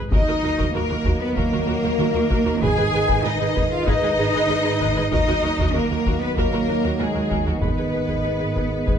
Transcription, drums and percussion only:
0.12 taiko medium
0.59 taiko medium
1.05 taiko medium
1.36 taiko medium
2.31 taiko medium
2.62 taiko medium
3.09 taiko medium
3.56 taiko medium
3.87 taiko medium
4.81 taiko medium
5.12 taiko medium
5.59 taiko medium
6.06 taiko medium
6.37 taiko medium
7.31 taiko medium
7.62 taiko medium
8.09 taiko medium
8.56 taiko medium
8.87 taiko medium

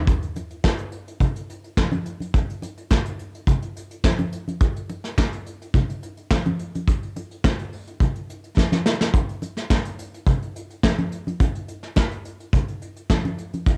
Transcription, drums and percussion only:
0.07 kick loud
0.07 closed hi-hat medium
0.07 muted conga soft
0.22 closed hi-hat soft
0.36 closed hi-hat medium
0.36 muted conga soft
0.50 closed hi-hat soft
0.64 kick loud
0.64 snare loud
0.64 high conga medium
0.78 closed hi-hat medium
0.92 closed hi-hat medium
1.08 closed hi-hat soft
1.20 kick loud
1.20 closed hi-hat medium
1.20 muted conga soft
1.20 low conga medium
1.36 closed hi-hat soft
1.50 closed hi-hat medium
1.64 closed hi-hat soft
1.77 kick loud
1.77 snare loud
1.77 high conga medium
1.92 closed hi-hat soft
1.92 high conga medium
2.06 closed hi-hat medium
2.20 closed hi-hat medium
2.20 high conga soft
2.34 kick loud
2.34 closed hi-hat medium
2.34 muted conga soft
2.49 closed hi-hat soft
2.62 closed hi-hat medium
2.62 muted conga soft
2.77 closed hi-hat soft
2.91 kick loud
2.91 snare loud
2.91 high conga medium
3.05 closed hi-hat soft
3.19 closed hi-hat medium
3.35 closed hi-hat soft
3.47 kick loud
3.47 closed hi-hat medium
3.47 muted conga soft
3.47 low conga medium
3.62 closed hi-hat soft
3.76 closed hi-hat medium
3.91 closed hi-hat soft
4.04 kick loud
4.04 snare loud
4.04 high conga medium
4.18 closed hi-hat soft
4.18 high conga medium
4.32 closed hi-hat medium
4.48 closed hi-hat medium
4.48 high conga soft
4.60 kick loud
4.60 closed hi-hat medium
4.60 muted conga soft
4.76 closed hi-hat soft
4.89 closed hi-hat medium
4.89 muted conga soft
5.04 snare soft
5.04 closed hi-hat soft
5.18 kick loud
5.18 snare loud
5.18 high conga medium
5.32 closed hi-hat soft
5.46 closed hi-hat medium
5.61 closed hi-hat soft
5.74 kick loud
5.74 closed hi-hat medium
5.74 muted conga soft
5.74 low conga medium
5.89 closed hi-hat soft
6.03 closed hi-hat medium
6.17 closed hi-hat soft
6.31 kick loud
6.31 snare loud
6.31 high conga medium
6.45 closed hi-hat soft
6.45 high conga medium
6.59 closed hi-hat medium
6.75 closed hi-hat medium
6.75 high conga soft
6.87 kick loud
6.87 closed hi-hat medium
6.87 muted conga soft
7.03 closed hi-hat soft
7.16 closed hi-hat medium
7.16 muted conga soft
7.31 closed hi-hat soft
7.44 kick loud
7.44 snare loud
7.44 high conga medium
7.59 closed hi-hat soft
7.72 open hi-hat medium
7.87 closed hi-hat medium
8.00 kick loud
8.00 closed hi-hat medium
8.00 muted conga soft
8.00 low conga medium
8.15 closed hi-hat soft
8.30 closed hi-hat medium
8.44 closed hi-hat soft
8.57 kick medium
8.57 snare medium
8.57 high conga medium
8.72 snare medium
8.72 high conga medium
8.86 snare medium
9.01 snare medium
9.01 high conga soft
9.14 kick loud
9.14 closed hi-hat medium
9.14 muted conga soft
9.29 closed hi-hat soft
9.42 closed hi-hat medium
9.42 muted conga soft
9.57 snare soft
9.57 closed hi-hat soft
9.70 kick loud
9.70 snare loud
9.70 high conga medium
9.85 closed hi-hat soft
9.99 closed hi-hat medium
10.14 closed hi-hat medium
10.27 kick loud
10.27 closed hi-hat medium
10.27 muted conga soft
10.27 low conga medium
10.42 closed hi-hat soft
10.56 closed hi-hat medium
10.70 closed hi-hat soft
10.83 kick loud
10.83 snare loud
10.83 high conga medium
10.98 closed hi-hat soft
10.98 high conga medium
11.12 closed hi-hat medium
11.27 closed hi-hat medium
11.27 high conga medium
11.40 kick loud
11.40 closed hi-hat medium
11.40 muted conga soft
11.55 closed hi-hat soft
11.68 closed hi-hat medium
11.83 snare soft
11.83 closed hi-hat soft
11.96 kick loud
11.96 snare loud
11.96 high conga medium
12.11 closed hi-hat soft
12.25 closed hi-hat medium
12.40 closed hi-hat soft
12.53 kick loud
12.53 closed hi-hat medium
12.53 muted conga soft
12.53 low conga medium
12.68 closed hi-hat soft
12.82 closed hi-hat medium
12.96 closed hi-hat soft
13.10 kick loud
13.10 snare loud
13.10 high conga medium
13.25 closed hi-hat soft
13.25 high conga medium
13.38 closed hi-hat medium
13.53 closed hi-hat soft
13.53 high conga soft
13.66 kick loud
13.66 closed hi-hat medium
13.66 muted conga soft

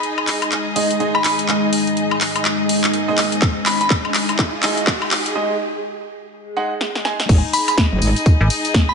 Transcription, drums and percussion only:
0.03 closed hi-hat medium
0.18 high woodblock medium
0.27 clap soft
0.27 open hi-hat loud
0.42 closed hi-hat medium
0.42 high woodblock medium
0.52 clap soft
0.52 closed hi-hat medium
0.76 open hi-hat loud
0.91 closed hi-hat medium
1.00 closed hi-hat medium
1.15 high woodblock medium
1.24 clap medium
1.24 open hi-hat loud
1.39 closed hi-hat medium
1.49 clap medium
1.49 closed hi-hat medium
1.73 open hi-hat loud
1.87 closed hi-hat medium
1.97 closed hi-hat soft
2.11 high woodblock medium
2.21 clap medium
2.21 open hi-hat loud
2.36 closed hi-hat medium
2.36 high woodblock medium
2.45 clap medium
2.45 closed hi-hat medium
2.69 open hi-hat loud
2.84 clap medium
2.84 closed hi-hat medium
2.94 closed hi-hat medium
3.18 clap medium
3.18 open hi-hat loud
3.32 closed hi-hat medium
3.42 kick loud
3.42 clap medium
3.42 closed hi-hat soft
3.66 clap medium
3.66 open hi-hat loud
3.81 closed hi-hat medium
3.90 kick loud
3.90 clap medium
3.90 closed hi-hat soft
4.05 high woodblock medium
4.14 clap medium
4.14 open hi-hat loud
4.29 closed hi-hat medium
4.29 high woodblock medium
4.39 kick loud
4.39 clap medium
4.39 closed hi-hat soft
4.63 clap medium
4.63 open hi-hat loud
4.77 closed hi-hat medium
4.87 kick loud
4.87 clap medium
4.87 closed hi-hat medium
5.02 high woodblock medium
5.11 clap medium
5.11 open hi-hat loud
5.26 closed hi-hat medium
6.81 snare medium
6.95 snare medium
7.05 snare medium
7.20 snare medium
7.29 kick loud
7.29 closed hi-hat medium
7.29 crash loud
7.29 tambourine soft
7.53 open hi-hat loud
7.53 tambourine medium
7.68 closed hi-hat medium
7.68 tambourine soft
7.68 high woodblock medium
7.78 kick loud
7.78 snare loud
7.78 closed hi-hat medium
8.02 open hi-hat loud
8.02 tambourine medium
8.16 closed hi-hat medium
8.16 tambourine soft
8.26 kick loud
8.26 closed hi-hat medium
8.26 tambourine soft
8.50 open hi-hat loud
8.50 tambourine medium
8.65 closed hi-hat medium
8.65 tambourine soft
8.74 kick loud
8.74 snare loud
8.74 closed hi-hat medium
8.74 tambourine soft

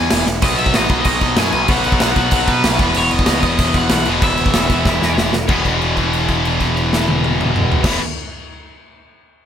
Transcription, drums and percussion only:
0.10 snare loud
0.10 crash loud
0.26 snare medium
0.42 kick loud
0.42 crash loud
0.59 crash medium
0.66 kick loud
0.74 snare loud
0.74 crash medium
0.89 kick loud
0.89 crash medium
1.05 kick loud
1.05 crash loud
1.21 kick medium
1.21 crash medium
1.36 snare loud
1.36 crash medium
1.52 crash medium
1.68 kick loud
1.68 crash medium
1.84 crash medium
1.92 kick loud
2.00 snare loud
2.00 crash medium
2.16 kick loud
2.16 crash medium
2.31 kick loud
2.31 crash medium
2.48 kick medium
2.48 crash medium
2.64 snare loud
2.64 crash loud
2.79 kick loud
2.79 crash medium
2.94 crash loud
3.11 crash medium
3.19 kick medium
3.26 snare loud
3.26 crash loud
3.43 kick medium
3.43 crash medium
3.59 kick loud
3.59 crash loud
3.74 kick medium
3.74 crash medium
3.89 snare loud
3.89 crash loud
4.05 crash medium
4.22 kick loud
4.22 crash medium
4.38 crash medium
4.46 kick loud
4.54 snare loud
4.54 crash medium
4.70 kick medium
4.70 crash medium
4.86 kick loud
4.86 snare medium
5.02 snare medium
5.18 snare loud
5.33 snare loud
5.48 kick loud
5.48 crash medium
5.65 kick medium
5.65 crash medium
5.81 crash soft
5.97 kick medium
5.97 crash medium
6.13 crash medium
6.28 kick medium
6.28 crash medium
6.45 crash medium
6.60 kick medium
6.60 crash medium
6.77 crash medium
6.93 snare medium
7.08 high tom loud
7.24 high tom loud
7.41 mid tom loud
7.56 mid tom loud
7.72 floor tom loud
7.84 kick loud
7.84 snare loud
7.84 crash loud

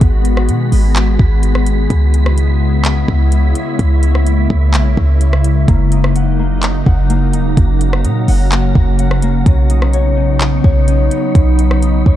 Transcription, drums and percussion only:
0.01 kick loud
0.01 closed hi-hat medium
0.25 closed hi-hat medium
0.37 cross-stick loud
0.49 closed hi-hat medium
0.72 open hi-hat medium
0.96 clap loud
0.96 closed hi-hat medium
1.19 kick medium
1.43 closed hi-hat medium
1.55 cross-stick loud
1.66 closed hi-hat medium
1.90 kick loud
1.90 closed hi-hat medium
2.14 closed hi-hat medium
2.26 cross-stick loud
2.38 closed hi-hat medium
2.85 clap loud
2.85 closed hi-hat medium
3.08 kick loud
3.32 closed hi-hat medium
3.55 closed hi-hat medium
3.79 kick loud
3.79 closed hi-hat medium
4.03 closed hi-hat medium
4.15 cross-stick medium
4.27 closed hi-hat medium
4.50 kick medium
4.74 clap loud
4.74 closed hi-hat medium
4.97 kick loud
5.21 closed hi-hat medium
5.33 cross-stick loud
5.44 closed hi-hat medium
5.68 kick loud
5.68 closed hi-hat medium
5.92 closed hi-hat medium
6.04 cross-stick loud
6.16 closed hi-hat medium
6.63 clap loud
6.63 closed hi-hat medium
6.86 kick loud
7.10 closed hi-hat medium
7.33 closed hi-hat medium
7.57 kick loud
7.57 closed hi-hat medium
7.81 closed hi-hat medium
7.93 cross-stick loud
8.05 closed hi-hat medium
8.28 open hi-hat soft
8.52 clap loud
8.52 closed hi-hat medium
8.75 kick loud
8.99 closed hi-hat medium
9.11 cross-stick medium
9.22 closed hi-hat medium
9.46 kick loud
9.46 closed hi-hat medium
9.70 closed hi-hat medium
9.82 cross-stick loud
9.93 closed hi-hat medium
10.41 clap loud
10.41 closed hi-hat medium
10.64 kick loud
10.88 closed hi-hat medium
11.11 closed hi-hat medium
11.35 kick loud
11.35 closed hi-hat medium
11.59 closed hi-hat medium
11.71 cross-stick loud
11.83 closed hi-hat medium
12.06 kick medium

